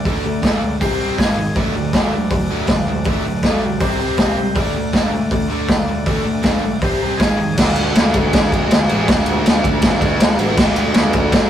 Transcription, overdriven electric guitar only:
0.06 D3 A3 D4
0.25 D3 A3
0.42 D3 A3 D4
0.62 D3 A3
0.81 C3 G3 C4
0.99 C3 G3 C4
1.19 G#2 D#3 G#3
1.36 G#2 D#3
1.56 D3 F#3 A3
1.74 D3 F#3
1.94 D3 F#3 A3
2.15 D3 F#3
2.33 D3 F#3
2.50 D3 F#3 A3
2.69 D3 F#3
2.88 D3 F#3
3.06 D3 F#3 A3
3.25 D3 F#3
3.44 D3 F#3 A3
3.63 D3 F#3
3.81 C3 G3 C4
3.99 C3 G3 C4
4.19 C3 G3 C4
4.37 C3 G3
4.55 D3 A3 D4
4.75 D3 A3
4.93 D3 A3 D4
5.11 D3 A3
5.32 D3 A3
5.50 D3 A3 D4
5.72 D3 A3
5.88 D3 A3
6.07 D3 A3 D4
6.26 D3 A3
6.43 D3 A3 D4
6.64 D3 A3
6.83 C3 G3 C4
7.02 C3 G3 C4
7.18 G#2 D#3 G#3
7.40 G#2 D#3
7.58 D3 A3 D4 F#4
8.88 A3 D4 F#4
8.93 D3
9.08 D3 A3 D4
9.12 F#4
10.39 D3 A3 D4 F#4
10.57 D3 A3 D4
10.61 F#4

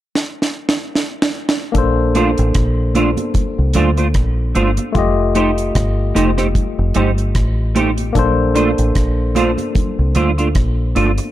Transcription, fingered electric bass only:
1.75 A#1
2.39 A1
2.56 A#1
3.59 C2
3.76 D2
4.15 A#1
4.56 G1
4.95 F1
5.76 G1
6.16 F1
6.79 F1
6.96 G1
7.36 A1
8.16 A#1
8.79 A1
8.96 A#1
9.99 C2
10.16 D2
10.56 A#1
10.96 G1

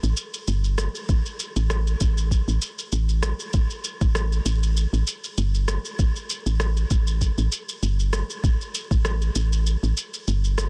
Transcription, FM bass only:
0.03 A1
0.48 G1
1.09 A1
1.56 A1
2.01 A1
2.48 A1
2.93 A1
3.54 A1
4.01 A1
4.46 A1
4.93 A1
5.38 G1
5.99 A1
6.46 A1
6.91 A1
7.38 A1
7.83 G1
8.44 A1
8.91 A1
9.36 A1
9.83 A1
10.28 G1

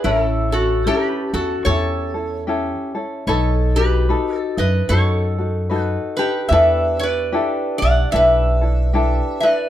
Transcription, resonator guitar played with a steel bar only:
0.04 E4 A#4
0.23 A4
0.52 F#4 A4
0.87 G4 A#4
1.06 B4
1.34 F#4 A4
1.65 A4 C#5
3.27 A4 C#5
3.76 G4 B4
4.37 A4
4.58 B4 D#5
4.89 A4 C#5
5.81 B4
6.17 G4 B4
6.49 B4 E5
6.99 B4 D5
7.78 F#5
7.82 D5
8.12 B4 E5
9.40 B4 D5

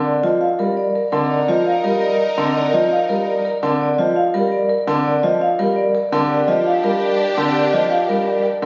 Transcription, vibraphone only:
Already playing: C4
0.24 F4
0.59 A#4
1.13 C4
1.49 F4
1.84 A#4
2.38 C4
2.74 F4
3.09 A#4
3.62 C4
3.98 F4
4.34 A#4
4.88 C4
5.23 F4
5.59 A#4
6.12 C4
6.48 F4
6.84 A#4
7.38 C4
7.73 F4
8.09 A#4
8.62 C4

